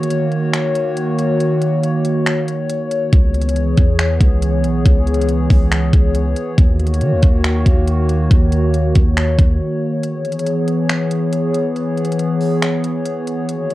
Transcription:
Already playing: D#3 A#3 F#4 C#5
0.03 closed hi-hat
0.11 closed hi-hat
0.32 closed hi-hat
0.54 finger snap, closed hi-hat
0.75 closed hi-hat
0.97 closed hi-hat
1.19 closed hi-hat
1.40 closed hi-hat
1.61 closed hi-hat
1.83 closed hi-hat
2.05 closed hi-hat
2.26 finger snap, closed hi-hat
2.48 closed hi-hat
2.69 closed hi-hat
2.91 closed hi-hat
3.13 C#2 E3 B3 G#4, kick, closed hi-hat
3.34 closed hi-hat
3.42 closed hi-hat
3.49 closed hi-hat
3.56 closed hi-hat
3.77 E2, kick, closed hi-hat
3.99 finger snap, closed hi-hat
4.21 C#2, kick, closed hi-hat
4.42 closed hi-hat
4.64 B1, closed hi-hat
4.85 C#2, kick, closed hi-hat
5.07 closed hi-hat
5.14 closed hi-hat
5.21 closed hi-hat
5.29 closed hi-hat
5.50 C#2, kick, open hi-hat
5.72 finger snap, closed hi-hat
5.93 C#2, kick, closed hi-hat
6.15 closed hi-hat
6.36 closed hi-hat
6.58 D#2 D#3 A#3 F#4 C#5, kick, closed hi-hat
6.80 closed hi-hat
6.87 closed hi-hat
6.94 closed hi-hat
7.01 D#3, closed hi-hat
7.12 D#2
7.23 D#2, kick, closed hi-hat
7.44 finger snap, closed hi-hat
7.66 D#2, kick, closed hi-hat
7.87 closed hi-hat
8.09 closed hi-hat
8.31 D#2, kick, closed hi-hat
8.52 closed hi-hat
8.74 closed hi-hat
8.95 D#2, kick, closed hi-hat
9.17 finger snap, closed hi-hat
9.39 D#2, kick, closed hi-hat
10.03 E3 B3 G#4, closed hi-hat
10.25 closed hi-hat
10.32 closed hi-hat
10.39 closed hi-hat
10.47 closed hi-hat
10.68 closed hi-hat
10.90 finger snap, closed hi-hat
11.11 closed hi-hat
11.33 closed hi-hat
11.55 closed hi-hat
11.76 closed hi-hat
11.98 closed hi-hat
12.05 closed hi-hat
12.12 closed hi-hat
12.19 closed hi-hat
12.41 open hi-hat
12.62 finger snap, closed hi-hat
12.84 closed hi-hat
13.05 closed hi-hat
13.27 closed hi-hat
13.49 D#3 A#3 F#4 C#5, closed hi-hat
13.70 closed hi-hat

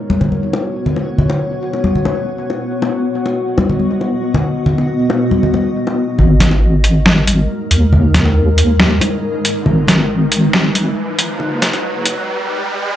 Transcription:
Already playing: B3 F#4 C#5
0.10 high conga
0.21 high bongo, low conga
0.32 high conga
0.53 high bongo
0.86 low conga
0.96 high bongo
1.18 low conga
1.30 high bongo
1.73 high bongo
1.84 high conga
1.95 low conga
2.05 high bongo, high conga
2.50 high bongo
2.71 D#5
2.82 high bongo
3.26 high bongo
3.58 high bongo, high conga
3.69 low conga
3.80 high conga
4.01 high bongo
4.34 high bongo, low conga
4.66 low conga
4.78 high bongo
5.10 high bongo
5.31 high conga
5.43 low conga
5.54 high bongo, high conga
5.87 high bongo
6.18 G#1 G#3 D#4 A#4, riser, low conga
6.40 snare, closed hi-hat, low conga
6.51 high bongo
6.84 closed hi-hat
7.06 snare, high conga
7.27 closed hi-hat, high conga
7.71 D#2, closed hi-hat
7.93 low conga
8.14 snare, closed hi-hat, low conga
8.26 high bongo
8.58 closed hi-hat
8.80 snare, high conga
9.01 closed hi-hat, high bongo, high conga
9.45 closed hi-hat
9.66 G#1 B4, low conga
9.88 snare, closed hi-hat, low conga
10.00 high bongo
10.32 closed hi-hat
10.53 snare, high conga
10.75 closed hi-hat, high conga
11.19 closed hi-hat
11.40 F#1, low conga
11.62 snare, closed hi-hat, low conga
11.73 closed hi-hat, high bongo
12.06 closed hi-hat

